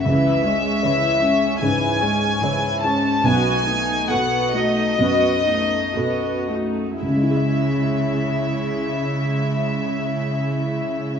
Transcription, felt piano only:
X:1
M:4/4
L:1/8
Q:1/4=64
K:C#m
V:1 name="Felt piano"
C,, G, c C G,, G, c C | B,,, B, A F F,, B, A F | [C,,C,G,EGe]8 |]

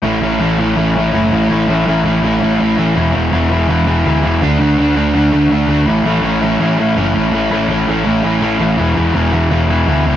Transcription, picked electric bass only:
X:1
M:4/4
L:1/8
Q:1/4=165
K:A
V:1 name="Picked electric bass" clef=bass
A,,, A,,, A,,,2 A,,,2 F,,, A,,, | A,,, A,,, A,,, A,,, A,,, A,,, A,,, A,,, | E,,, E,,, E,,,2 E,,,2 D,, E,,, | D,, D,, D,, D,, D,, D,, D,, D,, |
A,,, A,,, A,,,2 A,,,2 F,,, A,,, | A,,, A,,, A,,, A,,, A,,, A,,, A,,, A,,, | E,,, E,,, E,,,2 E,,,2 D,, C,, |]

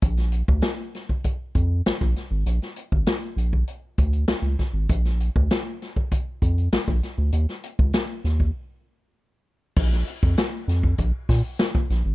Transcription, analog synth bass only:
X:1
M:4/4
L:1/16
Q:1/4=99
K:Bbmix
V:1 name="Analog synth bass" clef=bass
B,,,3 D,, z6 F,,2 B,,, B,,, z A,,, | B,,, z2 A,,, z2 B,,,2 z2 D,,2 _D,, D,, z A,,, | B,,,3 D,, z6 F,,2 B,,, B,,, z D,, | E,, z2 _D,, z2 E,,2 z8 |
B,,,2 z F,, z2 F,,2 B,,, z B,, z3 B,,, A,,, |]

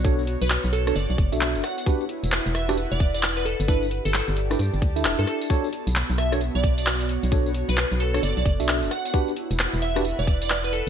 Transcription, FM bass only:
X:1
M:4/4
L:1/16
Q:"Swing 16ths" 1/4=132
K:Bm
V:1 name="FM bass" clef=bass
B,,,3 B,,,2 B,,,3 F,,, B,,, F,,, B,,,2 F,,, z2 | z3 E,,,2 E,,,4 E,,,6 G,,,- | G,,,3 G,,,2 G,,,3 G,, G,,, D,,2 E,,, G,, z2 | z3 B,,,2 B,,,4 B,,,6 B,,,- |
B,,,3 B,,,2 B,,,3 F,,, B,,, F,,, B,,,2 F,,, z2 | z3 E,,,2 E,,,4 E,,,6 z |]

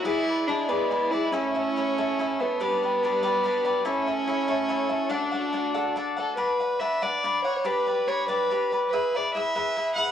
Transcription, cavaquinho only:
X:1
M:6/8
L:1/8
Q:3/8=95
K:D
V:1 name="Cavaquinho"
[E^GBd] [GBd] [EGBd] [EGBd] [EGBd] [GBd] | [EAce] [Ace] [EAce] [EAce] [EAce] [Ace] | [DGBd] [GBd] [DGBd] [DGBd] [DGBd] [GBd] | [EAce] [Ace] [EAce] [EAce] [EAce] [Ace] |
[DAdf] [Adf] [DAdf] [DAdf] [DAdf] [Adf] | [K:Bm] [DBdf] [Bdf] [DBdf] [DBdf] [DBdf] [Bdf] | [DGBd] [GBd] [DGBd] [DGBd] [DGBd] [GBd] | [E^GBe] [GBe] [EGBe] [EGBe] [EGBe] [GBe] |]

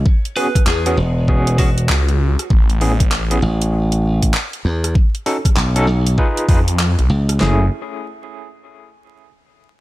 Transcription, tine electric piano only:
X:1
M:4/4
L:1/16
Q:"Swing 16ths" 1/4=98
K:F#dor
V:1 name="Tine electric piano"
z2 [B,CFG] z2 [B,CFG] z2 [B,CFG]2 [B,CFG] z4 z | z2 [B,CEG] z2 [B,CEG] z8 z2 | z2 [CDFA] z2 [CDFA] z2 [D^EGB]2 [DEGB] z4 z | [A,CEG]2 z12 z2 |]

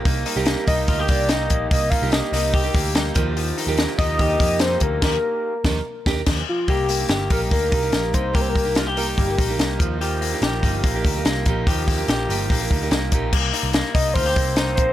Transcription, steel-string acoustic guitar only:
X:1
M:4/4
L:1/16
Q:1/4=145
K:Cm
V:1 name="Steel-string acoustic guitar"
[G,B,EG]3 [C,G,B,EG]3 [C,G,B,EG]3 [B,EG]3 [G,B,EG]4 | [G,B,EG]3 [C,G,B,EG]3 [C,G,B,EG]3 [B,EG]3 [G,B,EG]2 [E,F,B,EG]2- | [E,F,B,EG]3 [E,F,B,EG]3 [E,F,B,EG]3 [B,EG]3 [F,B,EG]4 | [F,B,EG]2 z4 [E,F,B,EG]2 z2 [B,EG]2 [F,B,EG]2 z2 |
[G,B,EG]3 [B,EG]3 [G,B,EG]3 [B,EG]2 [B,EG]3 [G,B,EG]2 | [G,B,EG]3 [B,EG]3 [G,B,EG]3 [B,EG]2 [B,EG]3 [F,B,EG]2 | [F,B,EG]3 [B,EG]3 [F,B,EG]3 [B,EG]2 [B,EG]3 [F,B,EG]2 | [F,B,EG]3 [B,EG]3 [F,B,EG]3 [B,EG]2 [B,EG]3 [F,B,EG]2 |
z16 |]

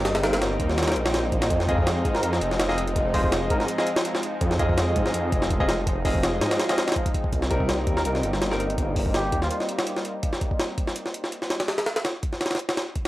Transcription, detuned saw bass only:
X:1
M:4/4
L:1/8
Q:"Swing 16ths" 1/4=165
K:Cm
V:1 name="Detuned saw bass" clef=bass
G,,,3 E,,2 B,,,3 | F,,3 A,, F,, F,,,3- | F,,,3 A,, z4 | F,,3 A,, F,, F,,,3- |
F,,,3 A,, z4 | C,,3 E,, C,, G,,,3- | G,,,3 E,, z4 | z8 |
z8 |]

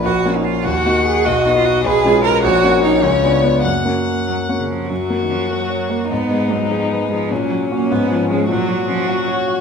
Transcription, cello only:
X:1
M:6/8
L:1/16
Q:3/8=100
K:F#
V:1 name="Cello"
F3 D E2 F4 G2 | F3 E F2 G4 A2 | F4 D2 C4 B,2 | A,6 F,3 C, E,2 |
F,3 D, E,2 F,4 A,2 | B,4 F,2 E,3 G, E,2 | F,4 A,2 B,4 G,2 | F,4 E,2 F,2 z4 |]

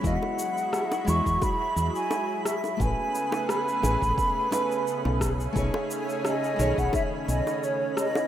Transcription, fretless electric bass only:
X:1
M:4/4
L:1/16
Q:"Swing 16ths" 1/4=87
K:Bmix
V:1 name="Fretless electric bass" clef=bass
E,, z4 z E,, E,, z2 E,, z4 z | A,,, z4 z A,,, A,,, z4 z B,,,2 z | B,,, z4 z B,,, B,,, z2 B,,, z4 z |]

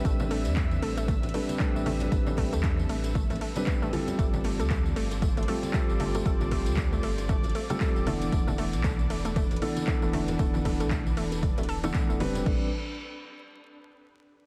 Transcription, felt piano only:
X:1
M:4/4
L:1/16
Q:"Swing 16ths" 1/4=116
K:Am
V:1 name="Felt piano"
[G,CDB]8- [G,CDB]2 [G,CDB]2 [G,CDB]4 | [G,CDB]8- [G,CDB]3 [G,CDB]3 [G,CFA]2- | [G,CFA]8- [G,CFA]2 [G,CFA]2 [G,CFA]4 | [G,CFA]8- [G,CFA]3 [G,CFA]3 [E,B,DA]2- |
[E,B,DA]8- [E,B,DA]2 [E,B,DA]2 [E,B,DA]4 | [E,B,DA]8- [E,B,DA]3 [E,B,DA]3 [G,CDB]2 | [G,CDB]2 z12 z2 |]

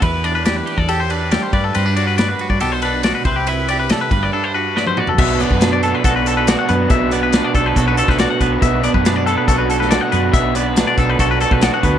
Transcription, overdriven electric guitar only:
X:1
M:4/4
L:1/8
Q:1/4=140
K:Bphr
V:1 name="Overdriven electric guitar"
z8 | z8 | z8 | [B,,F,B,D] [F,B,D] [B,,F,B,D] [F,B,D] [B,,F,B,D]2 [B,,F,B,D] [F,B,D] |
[B,,F,B,D] [F,B,D] [B,,F,B,D] [F,B,D] [B,,F,B,D]2 [B,,F,B,D] [F,B,D] | [B,,F,B,D] [F,B,D] [B,,F,B,D] [F,B,D] [B,,F,B,D]2 [B,,F,B,D] [F,B,D] | [B,,F,B,D] [F,B,D] [B,,F,B,D] [F,B,D] [B,,F,B,D]2 [B,,F,B,D] [F,B,D] |]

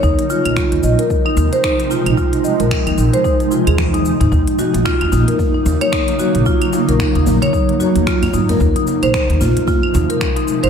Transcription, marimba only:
X:1
M:4/4
L:1/16
Q:"Swing 16ths" 1/4=112
K:Fphr
V:1 name="Marimba"
E z F2 F2 e B z E z c E z F2 | F2 e B z E z c E z F A z E z E | E z G2 F2 E B z E z d E z G2 | F2 E B z E z d E z G2 F2 E B |
z E z c E z F2 F2 E B z E z c |]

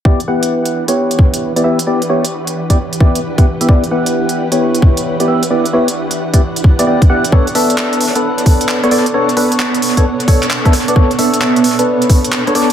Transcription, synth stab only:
X:1
M:4/4
L:1/16
Q:"Swing 16ths" 1/4=132
K:Edor
V:1 name="Synth stab"
[B,EGd] z [B,EGf]4- [B,EGf] [B,EGc]6 [B,EGd] [B,EGe] z | [B,EGd] z [B,EGc] z4 [B,EGd] z2 [B,EGd]2 z [B,EGf] z [B,EGe] | [B,EGd] z [B,EGf]4- [B,EGf] [B,EGc]6 [B,EGd] [B,EGe] z | [B,EGd] z [B,EGc] z4 [B,EGd] z3 [B,EGd] [B,EGd] z [B,EGf] z |
[B,DAc] z [B,DAe]4- [B,DAe] [B,DAB]6 [B,DAc] [B,DAd] z | [B,DAc] z [B,DAB] z4 [B,DAc] z2 [B,DAc]2 z [B,DAe] z [B,DAd] | [B,DAc] z [B,DAe]4- [B,DAe] [B,DAB]6 [B,DAc] [B,DAd] z |]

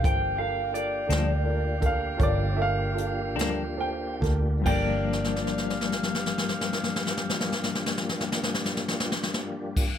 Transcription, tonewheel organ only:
X:1
M:12/8
L:1/8
Q:3/8=45
K:Gm
V:1 name="Tonewheel organ"
[B,DFG]12 | [B,DFG]12 |]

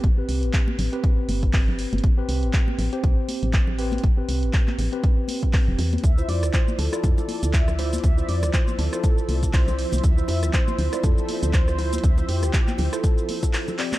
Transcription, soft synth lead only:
X:1
M:4/4
L:1/16
Q:"Swing 16ths" 1/4=120
K:Ddor
V:1 name="Soft synth lead"
z16 | z16 | z16 | e2 d2 c2 A6 e4 |
e2 d2 c2 A6 c4 | e2 e2 c4 A4 c4 | e2 G4- G A6- A z2 |]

